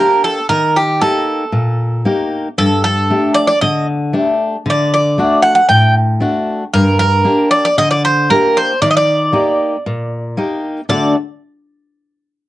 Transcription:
0.00 0.39 A#3 medium
0.00 0.39 D4 soft
0.00 0.39 G4 medium
0.00 0.22 A#4 medium
0.24 0.49 A4 medium
0.49 1.00 D#3 medium
0.49 0.76 A#4 medium
0.76 1.00 G4 medium
1.01 1.43 A#3 soft
1.01 1.43 D#4 soft
1.01 1.43 G4 medium
1.01 2.01 A4 medium
1.52 2.03 A#2 medium
2.05 2.47 A#3 soft
2.05 2.47 D#4 soft
2.05 2.47 G4 medium
2.58 3.08 G2 medium
2.58 2.82 A4 medium
2.84 3.34 A4 medium
3.10 3.52 A3 medium
3.10 3.52 D4 soft
3.10 3.52 G4 medium
3.34 3.46 D5 medium
3.47 3.61 D5 medium
3.61 4.12 D3 medium
3.61 3.86 D#5 medium
4.13 4.55 A3 soft
4.13 4.55 D4 soft
4.13 4.56 G4 medium
4.66 5.16 D3 medium
4.70 4.92 D5 medium
4.94 5.41 D5 medium
5.18 5.60 A3 medium
5.18 5.60 D4 soft
5.18 5.60 F#4 medium
5.42 5.54 F#5 medium
5.55 5.68 F#5 medium
5.69 6.20 A2 medium
5.69 5.94 G5 loud
6.20 6.63 A3 soft
6.20 6.63 D4 soft
6.20 6.63 F#4 medium
6.74 7.24 G2 medium
6.74 6.98 A#4 medium
6.99 7.50 A#4 medium
7.25 7.67 A#3 medium
7.25 7.67 D4 soft
7.25 7.68 G4 medium
7.51 7.64 D5 medium
7.65 7.77 D5 medium
7.78 8.29 D3 medium
7.78 7.90 D#5 loud
7.91 8.03 D5 medium
8.05 8.29 C5 medium
8.30 8.72 A#3 soft
8.30 8.72 D4 soft
8.30 8.73 G4 medium
8.30 8.57 A#4 medium
8.57 8.81 C5 medium
8.82 9.33 D#3 medium
8.82 8.89 D5 medium
8.91 8.96 D#5 medium
8.97 10.35 D5 medium
9.32 9.75 A#3 soft
9.32 9.75 D#4 soft
9.32 9.75 G4 medium
9.86 10.37 A#2 medium
10.37 10.79 A#3 soft
10.37 10.80 D#4 soft
10.37 10.80 G4 medium
10.89 11.14 D3 medium
10.89 11.14 A3 soft
10.89 11.14 D4 medium
10.89 11.15 F#4 medium
10.89 11.15 A4 medium
10.89 11.14 D5 medium

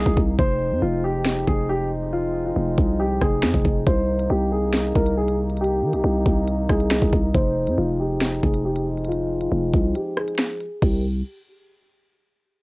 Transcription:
0.00 0.35 C3 medium
0.00 0.35 D#3 medium
0.00 0.35 A#3 medium
0.00 0.35 D#4 medium
0.00 0.14 G#4 medium
0.00 downlifter medium
0.06 0.17 C2 loud
0.06 kick loud
0.17 0.38 C2 loud
0.17 kick loud
0.39 0.73 F1 loud
0.39 3.83 F3 medium
0.39 3.83 G#3 medium
0.39 3.83 C4 medium
0.39 3.83 D#4 medium
0.39 0.80 C5 loud
0.39 kick loud
0.71 0.82 F2 loud
0.82 1.45 F1 loud
0.82 1.01 F4 medium
1.04 1.45 G4 medium
1.26 snare loud
1.47 2.52 F1 loud
1.47 1.66 G#4 medium
1.47 kick medium
1.69 1.88 G4 medium
2.13 2.43 F4 loud
2.45 2.96 F4 medium
2.56 2.77 F1 loud
2.78 3.20 C2 loud
2.78 kick medium
3.00 3.18 G4 medium
3.21 3.45 F1 loud
3.21 3.83 G#4 medium
3.21 kick medium
3.21 cross-stick loud
3.43 3.53 F2 loud
3.43 snare loud
3.54 3.64 F1 loud
3.54 kick medium
3.65 3.86 F1 loud
3.65 kick loud
3.87 4.28 C2 loud
3.87 7.31 C3 medium
3.87 7.31 D#3 medium
3.87 7.31 A#3 medium
3.87 10.65 D#4 medium
3.87 4.28 C5 medium
3.87 kick loud
3.87 closed hi-hat medium
4.19 closed hi-hat medium
4.30 4.93 C2 loud
4.30 4.49 G4 medium
4.52 4.93 G#4 medium
4.74 snare loud
4.74 closed hi-hat medium
4.95 5.84 C2 loud
4.95 5.14 A#4 medium
4.95 kick medium
5.06 closed hi-hat medium
5.17 5.36 G#4 medium
5.28 closed hi-hat medium
5.50 closed hi-hat soft
5.57 5.91 G4 medium
5.57 closed hi-hat medium
5.64 closed hi-hat medium
5.82 5.95 D#3 loud
5.93 6.03 C2 loud
5.93 6.44 G4 medium
5.93 closed hi-hat medium
6.04 6.25 C2 loud
6.26 6.68 C2 loud
6.26 kick loud
6.47 closed hi-hat medium
6.69 7.01 C2 loud
6.69 6.88 G#4 medium
6.69 kick medium
6.69 cross-stick loud
6.80 closed hi-hat medium
6.91 7.10 G#4 medium
6.91 snare loud
7.02 7.12 C2 loud
7.02 kick medium
7.02 closed hi-hat medium
7.13 7.34 C2 loud
7.13 kick medium
7.13 closed hi-hat medium
7.34 7.69 F1 loud
7.34 10.65 F3 medium
7.34 10.65 G#3 medium
7.34 10.65 C4 medium
7.34 7.75 C5 loud
7.34 kick loud
7.34 closed hi-hat medium
7.67 7.77 F2 loud
7.67 closed hi-hat medium
7.78 8.41 F1 loud
7.78 7.97 F4 medium
8.00 8.41 G4 medium
8.21 snare loud
8.21 closed hi-hat medium
8.43 9.48 F1 loud
8.43 8.62 G#4 medium
8.43 kick medium
8.54 closed hi-hat medium
8.65 8.84 G4 medium
8.76 closed hi-hat medium
8.97 closed hi-hat soft
9.05 9.39 F4 loud
9.05 closed hi-hat medium
9.12 closed hi-hat medium
9.41 9.92 F4 medium
9.41 closed hi-hat medium
9.52 9.73 F1 loud
9.74 9.94 C2 loud
9.74 kick medium
9.95 10.14 G4 medium
9.95 closed hi-hat medium
10.17 10.78 G#4 medium
10.17 cross-stick loud
10.28 closed hi-hat medium
10.35 snare loud
10.35 closed hi-hat medium
10.42 closed hi-hat soft
10.50 closed hi-hat medium
10.60 closed hi-hat medium
10.82 11.23 C2 loud
10.82 11.03 C3 medium
10.82 11.02 C4 medium
10.82 11.02 D#4 medium
10.82 11.02 G4 medium
10.82 11.03 A#4 medium
10.82 kick loud
10.82 crash medium

